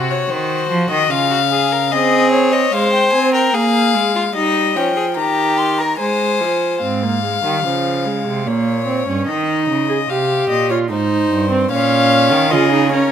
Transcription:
Already playing: cello C3, violin F#4
0.10 violin C#5
0.30 cello D#3, violin C5
0.70 cello F3
0.90 cello D#3, violin D#5
1.10 cello C#3, violin F4 F5
1.31 violin F#4
1.52 violin G#4
1.72 violin A#4
1.92 viola C4, violin G#4 D#5
2.32 violin C#5
2.52 violin C#5 D#5
2.72 viola G#3, violin C5 F5
2.92 violin G5
3.13 viola C4, violin G#5
3.34 violin A#4 G5
3.54 viola A#3, violin G#4 F5
3.94 viola G#3
4.15 violin F4
4.34 viola G3, violin D#4 D#5
4.76 viola F3, violin C#4 G5
4.96 violin G#4
5.17 viola D#3, violin G4 A#5
5.57 violin C6
5.78 violin A#4 A#5
5.99 viola G#3, violin C5 G#5
6.40 viola F3
6.81 cello G#2, viola C4, violin F5
7.03 viola A#3
7.24 viola G#3
7.44 cello D#3, viola G3
7.64 cello C#3, viola F3
8.06 viola G#3
8.27 cello C3
8.46 cello A#2, viola A#3, violin C#5
8.86 viola C4
9.07 cello G2, viola C#4
9.27 cello D#3, viola D#4, violin D#5
9.69 cello C#3
9.89 viola G#4
10.08 cello C3, viola G4, violin F5
10.49 cello A#2, violin D#5
10.70 viola F4, violin C#5
10.90 cello G#2, viola D#4, violin C5
11.31 cello G2
11.51 viola C4
11.70 cello A#2, viola C#4, violin C#5 F5
12.31 cello D#3
12.51 cello C#3, viola F4, violin G#4 D#5
12.72 viola D#4
12.92 viola C#4, violin A#4 C#5

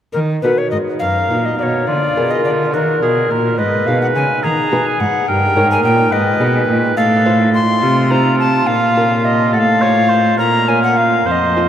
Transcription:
0.13 cello D#3, lute D#3, recorder A#4
0.42 cello B2, lute B2 D#4 F#4 A#4, recorder B4
0.58 recorder C#5
0.71 cello G#2, lute G#2, recorder D#5
0.99 cello F#2, lute F#2, oboe A#4, recorder F5
1.30 cello A#2, lute A#2 D#4 F#4 A#4
1.45 recorder D#5
1.58 cello B2, lute B2, recorder D5
1.63 recorder C#5
1.87 lute D3, cello D3, oboe F4, recorder D5
2.16 lute B2 F4 G#4 A#4, cello B2
2.31 recorder D#5
2.44 lute D3, cello D3, recorder D5
2.73 lute D#3, cello D#3, oboe F#4, recorder A#4
3.02 lute B2 D#4 F#4 A#4, cello B2, oboe G#4
3.30 lute A#2, cello A#2, oboe A#4
3.58 lute G#2, cello G#2, oboe B4, recorder D#5
3.87 lute B2 D#4 G#4 B4, cello B2, recorder F5
4.01 recorder F#5
4.15 lute C#3, cello C#3, recorder G#5
4.43 lute D#3, cello D#3, oboe G#4, recorder A#5
4.71 lute B2 D#4 G#4 B4, cello B2
4.87 recorder G#5
5.00 lute G#2, cello G#2, recorder F#5
5.28 lute G2, cello G2, oboe A#4, recorder G5
5.55 cello G#2, lute G#2 D#4 A#4 C#5
5.71 recorder G#5
5.84 cello A#2, lute A#2, recorder G5
6.11 cello G#2, lute G#2, oboe B4, recorder D#5
6.40 cello B2, lute B2 D#4 G#4 B4
6.68 cello A#2, lute A#2
6.97 cello A2, lute A2, oboe A4, recorder F5
7.25 lute D#4 F4 C5
7.54 recorder C6
7.82 lute C3, cello C3, oboe F4
8.10 lute D#4 F4 C5, recorder A#5
8.40 recorder A5
8.67 cello A#2, lute A#2, recorder F5
8.96 lute C#4 F4 A#4
9.25 recorder D#5
9.53 lute A2, cello A2, oboe A4, recorder F#5
9.59 recorder F5
9.81 lute C4 F4 C5, oboe C#5
10.09 oboe C5
10.38 lute A#2, cello A#2, oboe A#4, recorder A#5
10.68 lute C#4 F4 A#4, recorder G#5
10.83 recorder F#5
10.97 recorder F5
11.26 cello F2, lute F2, oboe C5, recorder F5
11.31 recorder D#5
11.56 lute C4 F4 A4

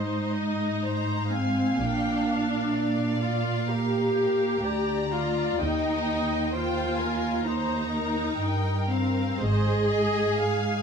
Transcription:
Already playing: cello section G#2, viola section D#4, violin section C5 D#5
0.34 violin section D#5
0.83 violin section C5 A#5
1.31 viola section C4, violin section F5 G#5
1.80 double bass section A#1, cello section A#2, viola section D4, violin section G5
2.27 violin section F5
2.74 violin section D5
3.22 viola section F4
3.70 viola section G4, violin section A#4
4.17 violin section A#4
4.64 cello section D2, violin section D5 A#5
5.12 viola section F4, violin section D5
5.59 double bass section D#2, cello section D#2, viola section D#4, violin section D#5 G5
6.54 viola section F4, violin section C5 G5
7.00 violin section A#4 G#5
7.45 viola section D#4, violin section C5 A#5
7.92 violin section A#4
8.40 cello section G2, violin section G5
8.89 viola section C4, violin section F5
9.41 double bass section G#1, cello section G#2, viola section G#4, violin section C5 D#5
9.90 violin section D#5 G#5
10.37 violin section F5

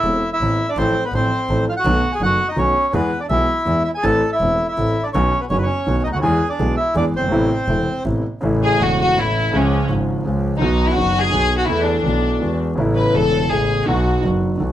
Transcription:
Already playing: bandoneon E4 E5
0.04 double bass E1, grand piano E1 E2 E3 B3 C4 A4
0.33 bandoneon E4 E5
0.41 double bass A1, grand piano A1 A2 E3 B3 C4 A4
0.69 bandoneon D4 D5
0.77 double bass A1, grand piano A1 A2 F3 A3 C4 A4, bandoneon C4 C5
1.05 bandoneon B3 B4
1.12 double bass A1, grand piano A1 A2 F3 A3 C4 A4, bandoneon C5
1.17 bandoneon C4
1.49 double bass A1, grand piano A1 A2 F3 A3 C4 A4
1.69 bandoneon F4 F5
1.77 bandoneon F#4 F#5
1.85 double bass B1, grand piano B1 B2 D#3 A3 B3 F#4
2.12 bandoneon G#4 G#5
2.21 double bass F#1, grand piano F#1 F#2 D#3 A3 B3 F#4, bandoneon F#5
2.25 bandoneon F#4
2.49 bandoneon D#4 D#5
2.56 grand piano B1 B2 D#3 A3 B3 F#4, double bass B1, bandoneon C#5
2.61 bandoneon C#4
2.93 double bass E2, grand piano E2 E3 G#3 B3 G#4, bandoneon B3 B4
3.20 bandoneon D4 D5
3.29 grand piano B1 B2 E3 G#3 B3 G#4, double bass B1, bandoneon E4 E5
3.65 grand piano E2 E3 G#3 B3 G#4, double bass E2
3.84 bandoneon E4 E5
3.95 bandoneon G#4 G#5
4.03 grand piano A1 A2 E3 A3 C4 A4, double bass A1, bandoneon A4 A5
4.32 bandoneon E4 E5
4.41 double bass E1, grand piano E1 E2 E3 A3 C4 A4
4.68 bandoneon E4 E5
4.77 grand piano A1 A2 E3 A3 C4 A4, double bass A1
5.03 bandoneon D4 D5
5.13 double bass B1, grand piano B1 B2 D#3 F#3 B3 F#4, bandoneon C#4 C#5
5.40 bandoneon B3 B4
5.49 grand piano F#1 F#2 D#3 F#3 B3 F#4, double bass F#1, bandoneon C#4 C#5
5.58 bandoneon B4
5.63 bandoneon C#4 C#5
5.86 grand piano B1 B2 D#3 F#3 B3 F#4, double bass B1
6.04 double bass D2, bandoneon D#4 D#5
6.10 grand piano C#2 D2, bandoneon F#5
6.15 bandoneon F#4
6.20 grand piano D#2 E2 E3 G#3, bandoneon G#5
6.24 double bass E2, grand piano B3 G#4, bandoneon G#4
6.49 bandoneon D4 D5
6.59 grand piano B1 B2 E3 G#3 B3 G#4, double bass B1
6.77 bandoneon E4 E5
6.95 grand piano E2 E3 G#3 B3 G#4, double bass E2, bandoneon D4 D5
7.14 double bass G1, bandoneon C4 C5
7.19 grand piano F#1
7.23 grand piano G1
7.28 grand piano G#1 A1 C3 A3 B3, double bass A1
7.32 grand piano A2 E4
7.69 double bass E1, grand piano E1 E2 C3 A3 B3 E4
8.04 grand piano A1 A2 C3 A3 B3 E4, double bass A1
8.41 double bass A1, grand piano A1 A2 C#3 E3 A3
8.45 grand piano E4
8.63 violin section G#4
8.77 grand piano E1 E2 C#3 E3 A3, double bass E1
8.82 grand piano E4, violin section F#4
9.01 violin section F#4
9.14 grand piano A1 A2 C#3 E3 A3 E4, double bass A1
9.19 violin section E4
9.51 double bass C#2, grand piano C#2 C#3 F3 G#3
9.55 violin section C#4, grand piano F4
9.87 double bass G#1, grand piano G#1 G#2 C#3 F3 G#3 F4
10.25 double bass C#2, grand piano C#2 C#3 F3 G#3 F4
10.59 double bass B1, grand piano B1 B2 D#3 F#3 B3, violin section D#4
10.63 grand piano F#4
10.87 violin section E4
10.95 double bass F#1, grand piano F#1 F#2 D#3 F#3 B3, violin section F#4
10.99 grand piano F#4
11.21 violin section G#4
11.31 double bass B1, grand piano B1 B2 D#3 F#3 B3 F#4
11.58 violin section F#4
11.67 double bass E2, grand piano E2 E3 A3 B3 A4, violin section E4
11.84 violin section D4
12.04 double bass B1, grand piano B1 B2 E3 A3 B3 A4
12.40 double bass E2, grand piano E2 E3 G#3 B3 F#4
12.75 double bass A1, grand piano A1 A2 C#3 A3 B3
12.80 grand piano E4
12.96 violin section B4
13.12 grand piano E1 E2 C#3 A3 B3, double bass E1, violin section A4
13.16 grand piano E4
13.48 grand piano A1 A2 C#3 A3 B3 E4, double bass A1, violin section G#4
13.86 double bass B1, grand piano B1 B2 D#3 F#3 B3, violin section F#4
13.90 grand piano F#4
14.21 double bass F#1, grand piano F#1 F#2 D#3 F#3 B3
14.25 grand piano F#4
14.58 double bass B1, grand piano B1 B2 D#3 F#3 B3
14.62 grand piano F#4

